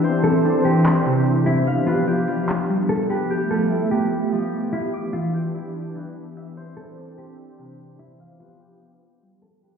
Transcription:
Already playing: analog synth pad D4, harp E4 G4 E5
0.04 analog synth pad E3 C4 C5, harp C5, closed hi-hat
0.24 harp E4, clean electric guitar A4, closed hi-hat
0.44 harp D4, closed hi-hat
0.65 harp C4, clean electric guitar G4, closed hi-hat
0.86 clap, closed hi-hat
1.05 harp C3, closed hi-hat
1.26 closed hi-hat
1.46 clean electric guitar E4, harp E4, closed hi-hat
1.67 analog synth pad F3 B3 D4 G4, harp F5, closed hi-hat
1.87 clean electric guitar F4, harp B4, closed hi-hat
2.07 harp G4, closed hi-hat
2.28 harp F4, closed hi-hat
2.49 clap, closed hi-hat
2.69 harp G3, closed hi-hat
2.76 closed hi-hat
2.83 closed hi-hat
2.89 clean electric guitar A4, closed hi-hat
2.96 closed hi-hat
3.03 closed hi-hat
3.10 clean electric guitar G4, harp B4, closed hi-hat
3.17 closed hi-hat
3.23 closed hi-hat
3.30 analog synth pad F3 A3 G4 E5, harp G4
3.50 harp F4, clean electric guitar A4
3.71 harp E4
3.91 harp B3, clean electric guitar G4
4.32 harp F3
4.73 clean electric guitar E4, harp F4
4.93 analog synth pad E3 D4, harp D6
5.13 clean electric guitar F4, harp E5
5.34 harp G4
5.54 harp E4
5.96 harp E3
6.37 harp E5
6.57 analog synth pad C4 D4 C5, harp C5
6.77 harp E4, clean electric guitar A4
6.97 harp D4
7.18 harp C4, clean electric guitar G4
7.58 harp C3
7.99 harp E4, clean electric guitar E4
8.20 analog synth pad F3 B3 G4, harp F5
8.40 clean electric guitar F4, harp B4
8.60 harp G4
8.81 harp F4
9.22 harp G3
9.42 clean electric guitar A4
9.63 clean electric guitar G4, harp B4

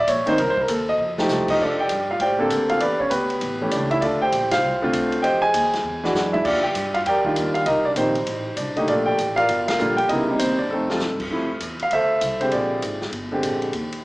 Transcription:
0.07 upright bass A#1, grand piano C#5, kick, hi-hat pedal, ride
0.26 grand piano D#3 A#3 C4 D#4 C5, muted upright bass stroke, ride
0.38 upright bass C2, grand piano A#4, kick, ride
0.50 grand piano C5
0.57 grand piano A#4, kick
0.68 upright bass D#2, grand piano A4, kick, hi-hat pedal, ride
0.89 grand piano D#5
0.98 upright bass F2
1.18 grand piano F3 A3 D#4 G4, snare
1.28 upright bass C2, snare, hi-hat pedal
1.48 grand piano D#4 D#5, kick, crash
1.59 upright bass F2, grand piano D4 F4 A4 D5, kick
1.80 grand piano G4 D5 G5
1.89 upright bass G2, kick, hi-hat pedal, ride
2.11 grand piano F4 F5
2.19 upright bass A2, grand piano G4 C5 D5 G5, kick, ride
2.39 grand piano D3 A#3 C4 A4
2.50 upright bass D2, kick, hi-hat pedal, ride
2.69 grand piano F4 F5, ride
2.80 upright bass E2, grand piano D4 G4 B4 D5, kick, ride
3.00 grand piano C#4 C#5, kick
3.10 upright bass D2, grand piano B3 G4 B4, kick, hi-hat pedal, ride
3.30 ride
3.41 upright bass A1, kick, ride
3.61 grand piano E3 A3 C#4 G4
3.71 upright bass C#2, grand piano D4 D5, kick, hi-hat pedal, ride
3.91 grand piano E4 E5, ride
4.01 upright bass D2, grand piano D4 F4 A4 D5, kick, ride
4.22 grand piano G4 C5 G5
4.32 upright bass A#1, kick, hi-hat pedal, ride
4.43 upright bass A1
4.51 upright bass F1, grand piano F4 C5 F5, snare, ride
4.62 upright bass C2
4.82 grand piano D3 A3 C4 F4
4.93 upright bass D2, kick, hi-hat pedal, ride
5.12 ride
5.22 upright bass F2, grand piano G4 C5 D#5 G5, kick, ride
5.42 grand piano G#4 D#5 G#5
5.53 upright bass D#2, kick, hi-hat pedal, ride
5.73 snare, ride
5.83 upright bass E2
6.03 grand piano E3 G#3 D4 F#4, snare
6.13 upright bass F#2, grand piano F#5, snare, hi-hat pedal
6.18 grand piano F#4
6.33 grand piano E4 E5, mid tom
6.44 upright bass D#2, grand piano D4 F4 G4 D5, kick, crash
6.63 grand piano G4 D5 G5, muted upright bass stroke
6.74 upright bass G2, kick, hi-hat pedal, ride
6.94 grand piano F4 F5, ride
7.05 upright bass F2, grand piano G4 A#4 D5 G5, kick, ride
7.24 grand piano D#3 G3 D4 F4, muted upright bass stroke, kick
7.36 upright bass D#2, hi-hat pedal, ride
7.54 grand piano F4 F5, ride
7.66 upright bass C2, grand piano D#4 G4 A#4 D#5, kick, ride
7.85 grand piano D4 D5
7.96 upright bass A#1, grand piano D#3 A#3 C4 D#4 G4 C5, kick, hi-hat pedal, ride
8.15 ride
8.26 upright bass A1, kick, ride
8.57 upright bass C2, grand piano D4 D5, kick, hi-hat pedal, ride
8.76 grand piano D3 A3 A#3 D#4 G4 D#5, ride
8.88 upright bass A#1, grand piano D4 F4 A4 D5, kick, ride
9.06 grand piano G4 D5 G5
9.18 upright bass A1, kick, hi-hat pedal, ride
9.36 grand piano F4 A#4 D5 F5, ride
9.49 upright bass G1, kick, ride
9.68 grand piano F4 A#4 F5, snare, ride
9.79 upright bass A#1, grand piano D3 G3 A#3 F4, hi-hat pedal
9.97 grand piano G4 G5, ride
10.09 upright bass C2, grand piano C#3 G#3 B3 D#4 E4 G4 A#4 D#5, kick, ride
10.30 grand piano C3 G3 A#3 D#4
10.39 upright bass D#2, grand piano C4 C5, kick, hi-hat pedal, ride
10.59 grand piano D4 D5
10.69 upright bass F2, grand piano C4 D#4 A4
10.74 grand piano A3
10.90 grand piano C3 F3 A3 F4, snare
11.00 upright bass G2, snare, hi-hat pedal
11.20 kick, crash
11.30 upright bass F2, grand piano C3 F3 A3 E4, kick
11.60 upright bass E2, kick, hi-hat pedal, ride
11.79 grand piano F5, ride
11.91 upright bass D2, grand piano A4 C5 E5, kick, ride
12.21 upright bass C2, kick, hi-hat pedal, ride
12.40 grand piano D3 G#3 C4 G4 C5, ride
12.51 upright bass A#1, grand piano F4 G#4 D5, kick, ride
12.82 upright bass G#1, kick, hi-hat pedal, ride
13.01 snare
13.12 upright bass G1, kick, ride
13.32 grand piano D3 G#3 C4 G4
13.42 upright bass A#1, kick, hi-hat pedal, ride
13.62 ride
13.72 upright bass D#2, kick, ride
13.92 ride

